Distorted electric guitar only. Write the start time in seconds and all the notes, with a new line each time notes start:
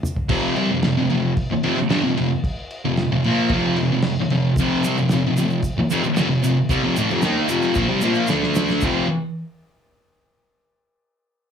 0.29 F2 C3 F3
0.56 C3 G3
0.72 F2 C3
0.84 F2 C3
0.97 F2 C3
1.11 F2 C3
1.51 muted distorted electric guitar stroke
1.63 F2 C3
1.77 muted distorted electric guitar stroke
1.89 G2 D3
2.03 F2 C3
2.17 F2 C3
2.85 F2 C3
3.12 F2 C3
3.25 A#2 F3 A#3
3.52 F2 C3 F3
3.78 F2 C3
3.92 F2 C3
4.19 muted distorted electric guitar stroke
4.30 F2 C3
4.59 F2 C3 F3
4.84 C3 G3
4.98 F2 C3
5.12 F2 C3
5.26 F2 C3
5.38 F2 C3
5.78 muted distorted electric guitar stroke
5.91 F2 C3
6.04 muted distorted electric guitar stroke
6.16 G2 D3
6.29 F2 C3
6.43 F2 C3
6.70 C3 G3
6.83 F2 C3
6.97 A2 E3
7.10 F2 C3
7.23 D#3 A#3 D#4
7.48 F2 C3 F3
7.75 A#2 F3
7.89 C3 G3
8.02 A#2 F3 A#3
8.28 D3 A3 D4
8.83 F2 C3 F3